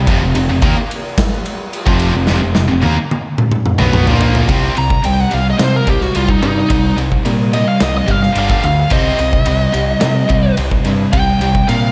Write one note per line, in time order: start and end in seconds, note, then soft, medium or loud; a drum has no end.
0.07 0.20 F1 loud
0.07 0.21 F2 loud
0.07 0.21 C3 loud
0.07 kick loud
0.07 ride loud
0.21 0.34 F1 medium
0.21 0.34 F2 medium
0.21 0.35 C3 medium
0.35 0.48 F1 medium
0.35 0.49 F2 medium
0.35 0.49 C3 medium
0.35 ride medium
0.50 0.62 F1 medium
0.50 0.63 F2 medium
0.50 0.62 C3 medium
0.62 0.75 D#2 loud
0.62 0.75 D#3 loud
0.62 0.76 A#3 loud
0.62 kick loud
0.62 ride loud
0.91 ride medium
1.18 kick loud
1.18 snare loud
1.18 ride loud
1.46 ride medium
1.73 ride medium
1.87 2.12 F1 medium
1.87 2.14 F2 medium
1.87 2.14 C3 loud
1.87 2.14 F3 loud
1.87 kick loud
1.99 ride medium
2.15 2.27 F1 medium
2.15 2.27 F2 medium
2.15 2.27 C3 medium
2.27 2.42 F1 loud
2.27 2.41 F2 loud
2.27 2.41 C3 loud
2.27 snare medium
2.42 2.55 F1 medium
2.42 2.54 F2 medium
2.42 2.55 C3 medium
2.55 2.69 F1 medium
2.55 2.67 F2 medium
2.55 2.68 C3 medium
2.55 snare medium
2.68 2.83 F1 medium
2.68 2.82 F2 medium
2.68 2.82 C3 medium
2.83 2.97 D#2 medium
2.83 2.96 D#3 loud
2.83 2.96 A#3 loud
2.83 high tom medium
3.11 high tom medium
3.38 mid tom medium
3.52 mid tom medium
3.66 mid tom medium
3.79 4.06 B1 medium
3.79 4.06 B2 medium
3.79 4.07 F#3 medium
3.79 4.07 B3 loud
3.79 mid tom medium
3.93 mid tom medium
4.07 4.47 A#1 medium
4.07 4.47 A#2 medium
4.07 4.47 F3 loud
4.07 4.48 A#3 medium
4.07 floor tom medium
4.21 floor tom loud
4.35 floor tom medium
4.47 4.68 C2 medium
4.47 4.74 C3 medium
4.47 4.74 G3 medium
4.47 4.75 C4 medium
4.47 kick loud
4.47 ride medium
4.76 4.97 C2 medium
4.76 5.01 C3 medium
4.76 5.01 G3 medium
4.76 5.04 A#5 medium
4.76 ride medium
4.90 kick medium
5.03 5.24 C2 medium
5.03 5.28 C3 medium
5.03 5.29 G3 medium
5.03 5.20 G5 medium
5.03 ride medium
5.20 5.33 F#5 medium
5.30 5.52 C2 medium
5.30 5.56 C3 medium
5.30 5.56 G3 medium
5.30 5.46 F5 medium
5.30 ride medium
5.50 5.61 D#5 medium
5.58 5.83 C3 medium
5.58 5.79 C3 medium
5.58 5.84 G3 medium
5.58 snare loud
5.58 ride medium
5.64 5.75 C5 medium
5.76 5.88 A#4 medium
5.86 6.07 C2 medium
5.86 6.12 C3 medium
5.86 6.12 G3 medium
5.86 6.02 G4 medium
5.86 kick medium
5.86 ride medium
6.01 6.15 F#4 medium
6.01 snare soft
6.14 6.35 C2 medium
6.14 6.39 C3 medium
6.14 6.39 G3 medium
6.14 6.30 F4 medium
6.14 ride medium
6.29 6.42 D#4 medium
6.29 kick medium
6.42 6.62 G2 medium
6.42 6.67 C3 medium
6.42 6.68 G3 medium
6.42 6.96 D#4 loud
6.42 ride medium
6.69 6.90 C2 loud
6.69 6.94 C3 medium
6.69 6.95 G3 medium
6.69 kick loud
6.69 ride medium
6.97 7.17 C2 medium
6.97 7.22 C3 medium
6.97 7.22 G3 medium
6.97 ride medium
7.12 kick medium
7.25 7.64 A#2 medium
7.25 7.51 C3 medium
7.25 7.51 G3 medium
7.25 ride medium
7.53 7.79 C3 medium
7.53 7.79 G3 medium
7.53 7.67 D#5 medium
7.53 ride medium
7.69 7.81 F5 medium
7.80 8.00 C2 medium
7.80 8.05 C3 medium
7.80 8.06 G3 medium
7.80 7.96 D#5 medium
7.80 snare loud
7.80 ride loud
7.98 8.10 D#5 medium
8.06 8.28 G1 medium
8.06 8.33 C3 medium
8.06 8.33 G3 medium
8.06 kick medium
8.06 ride medium
8.10 8.21 F5 medium
8.22 8.36 F5 medium
8.22 snare soft
8.33 8.55 G1 medium
8.33 8.61 G2 medium
8.33 8.61 D3 medium
8.33 8.62 G3 loud
8.33 ride medium
8.37 8.63 G2 medium
8.37 8.63 D3 medium
8.37 8.50 F5 medium
8.50 8.64 F5 medium
8.50 kick medium
8.62 8.83 D2 medium
8.62 8.88 G2 medium
8.62 8.88 D3 medium
8.62 8.92 F5 medium
8.62 ride medium
8.90 9.11 C2 loud
8.90 9.17 C3 medium
8.90 9.17 G3 medium
8.90 9.18 C4 loud
8.90 10.55 D#5 loud
8.90 kick loud
8.90 ride loud
9.19 9.39 C2 medium
9.19 9.44 C3 medium
9.19 9.44 G3 medium
9.19 ride medium
9.33 kick medium
9.46 9.66 C2 medium
9.46 9.72 C3 medium
9.46 9.72 G3 medium
9.46 ride loud
9.73 9.94 C2 medium
9.73 9.99 C3 medium
9.73 9.99 G3 medium
9.73 ride medium
10.01 10.27 C3 medium
10.01 10.22 C3 medium
10.01 10.27 G3 medium
10.01 snare loud
10.01 ride medium
10.29 10.49 C2 medium
10.29 10.55 C3 medium
10.29 10.55 G3 medium
10.29 kick medium
10.29 ride medium
10.57 10.77 C2 medium
10.57 10.83 C3 medium
10.57 10.83 G3 medium
10.57 ride medium
10.71 kick medium
10.85 11.05 G2 medium
10.85 11.10 C3 medium
10.85 11.11 G3 medium
10.85 ride medium
11.13 11.33 C2 medium
11.13 11.38 C3 medium
11.13 11.39 G3 medium
11.13 11.67 G5 medium
11.13 kick loud
11.13 ride medium
11.40 11.60 C2 medium
11.40 11.66 C3 medium
11.40 11.66 G3 medium
11.40 ride medium
11.55 kick medium
11.67 11.92 A#2 medium
11.67 11.92 C3 medium
11.67 11.92 G3 medium
11.67 11.92 F5 loud
11.67 ride medium